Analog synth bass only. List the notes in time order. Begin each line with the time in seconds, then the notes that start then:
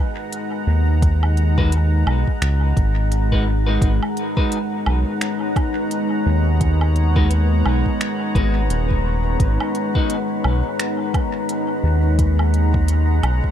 0.67 D#2
2.06 B1
2.42 C#2
2.77 G#1
3.81 G#1
4.87 B1
6.26 D#2
7.66 B1
8.35 G#1
8.70 D#1
9.40 G#1
10.45 B1
11.83 D#2
13.23 B1